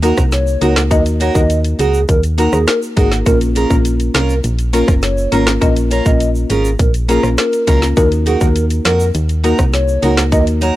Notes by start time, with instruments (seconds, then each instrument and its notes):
Already playing: fm bass D#2
0.02 marimba A#3 D#4 F#4 A#4, steel-string acoustic guitar D#4 F#4 A#4, closed hi-hat, shaker
0.17 fm bass C2, kick, cross-stick, shaker
0.32 soft synth lead C#5, snare, closed hi-hat, shaker
0.47 shaker
0.61 fm bass C#2, marimba A#3 D#4 F#4 A#4, steel-string acoustic guitar D#4 F#4 A#4, closed hi-hat, shaker
0.76 cross-stick, snare, shaker
0.91 fm bass D#2, marimba A#3 D#4 F#4 A#4, soft synth lead D#5, kick, closed hi-hat, shaker
1.06 closed hi-hat, shaker
1.20 steel-string acoustic guitar D#4 F#4 A#4, soft synth lead C#5, closed hi-hat, shaker
1.35 fm bass D#2, marimba A#3 D#4 F#4 A#4, soft synth lead D#5, kick, shaker
1.50 closed hi-hat, shaker
1.65 closed hi-hat, shaker
1.79 fm bass C#2, steel-string acoustic guitar D#4 F#4 A#4, soft synth lead G#4, closed hi-hat, shaker
1.94 shaker
2.09 fm bass D#2, soft synth lead A#4, kick, closed hi-hat, shaker
2.23 closed hi-hat, shaker
2.38 marimba A#3 D#4 F#4 A#4, steel-string acoustic guitar D#4 F#4 A#4, closed hi-hat, shaker
2.53 fm bass D#2, soft synth lead G#4, cross-stick, shaker
2.67 soft synth lead A#4, cross-stick, snare, closed hi-hat, shaker
2.82 shaker
2.96 fm bass G#1, marimba A#3 D#4 F#4 A#4, steel-string acoustic guitar D#4 F#4 A#4, soft synth lead G#4, kick, closed hi-hat, shaker
3.12 snare, shaker
3.26 fm bass A#1, marimba A#3 C#4 F4 A#4, soft synth lead A#4, kick, closed hi-hat, shaker
3.41 closed hi-hat, shaker
3.55 steel-string acoustic guitar C#4 F4 A#4, soft synth lead G#4, closed hi-hat, shaker
3.70 fm bass A#1, marimba A#3 C#4 F4 A#4, soft synth lead A#4, kick, shaker
3.85 closed hi-hat, shaker
4.00 closed hi-hat, shaker
4.14 fm bass C2, steel-string acoustic guitar C#4 F4 A#4, soft synth lead A#4, cross-stick, snare, closed hi-hat, shaker
4.29 shaker
4.44 fm bass A#1, closed hi-hat, shaker
4.59 closed hi-hat, shaker
4.73 marimba A#3 C#4 F4 A#4, steel-string acoustic guitar C#4 F4 A#4, closed hi-hat, shaker
4.88 fm bass F#1, kick, cross-stick, shaker
5.03 soft synth lead C#5, snare, closed hi-hat, shaker
5.18 shaker
5.32 fm bass G#1, marimba A#3 C#4 F4 A#4, steel-string acoustic guitar C#4 F4 A#4, closed hi-hat, shaker
5.47 cross-stick, snare, shaker
5.61 fm bass A#1, marimba A#3 C#4 F4 A#4, soft synth lead D#5, kick, closed hi-hat, shaker
5.76 closed hi-hat, shaker
5.91 steel-string acoustic guitar C#4 F4 A#4, soft synth lead C#5, closed hi-hat, shaker
6.06 fm bass A#1, marimba A#3 C#4 F4 A#4, soft synth lead D#5, kick, shaker
6.20 closed hi-hat, shaker
6.35 shaker
6.50 fm bass G#1, steel-string acoustic guitar C#4 F4 A#4, soft synth lead G#4, closed hi-hat, shaker
6.65 shaker
6.79 fm bass A#1, soft synth lead A#4, kick, closed hi-hat, shaker
6.94 closed hi-hat, shaker
7.08 marimba A#3 C#4 F4 A#4, steel-string acoustic guitar C#4 F4 A#4, soft synth lead G#4, closed hi-hat, shaker
7.23 fm bass A#1, cross-stick, shaker
7.38 soft synth lead A#4, cross-stick, snare, closed hi-hat, shaker
7.53 closed hi-hat, shaker
7.67 fm bass C#2, marimba A#3 C#4 F4 A#4, steel-string acoustic guitar C#4 F4 A#4, kick, closed hi-hat, shaker
7.82 snare, shaker
7.97 fm bass D#2, marimba A#3 D#4 F#4 A#4, soft synth lead A#4, kick, closed hi-hat, shaker
8.12 closed hi-hat, shaker
8.26 steel-string acoustic guitar D#4 F#4 A#4, soft synth lead G#4, closed hi-hat, shaker
8.41 fm bass D#2, marimba A#3 D#4 F#4 A#4, soft synth lead A#4, kick, shaker
8.56 closed hi-hat, shaker
8.70 closed hi-hat, shaker
8.85 fm bass F2, steel-string acoustic guitar D#4 F#4 A#4, soft synth lead A#4, cross-stick, snare, closed hi-hat, shaker
9.00 shaker
9.14 fm bass D#2, closed hi-hat, shaker
9.29 closed hi-hat, shaker
9.44 marimba A#3 D#4 F#4 A#4, steel-string acoustic guitar D#4 F#4 A#4, closed hi-hat, shaker
9.59 fm bass C2, kick, cross-stick, shaker
9.73 soft synth lead C#5, snare, closed hi-hat, shaker
9.88 shaker
10.02 fm bass C#2, marimba A#3 D#4 F#4 A#4, steel-string acoustic guitar D#4 F#4 A#4, closed hi-hat, shaker
10.17 cross-stick, snare, shaker
10.32 fm bass D#2, marimba A#3 D#4 F#4 A#4, soft synth lead D#5, kick, closed hi-hat, shaker
10.47 closed hi-hat, shaker
10.61 steel-string acoustic guitar D#4 F#4 A#4, soft synth lead C#5, closed hi-hat, shaker